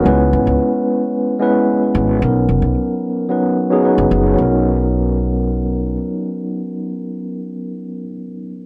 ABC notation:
X:1
M:4/4
L:1/16
Q:1/4=111
K:B
V:1 name="Tine electric piano"
[G,B,CEB]8- [G,B,CEB]2 [G,B,CEB] z4 z | [F,B,CDA]8 [F,B,CDB]2 z [F,B,CDG] [F,B,CDB]4 | [F,B,CDA]16- | [F,B,CDA]16 |]
V:2 name="Upright bass" clef=bass
C,,2 G,,, C,, z8 z2 G,,,2 | B,,,2 F,,, B,,, z8 z F,,, F,,,2 | B,,,12 z4 | z16 |]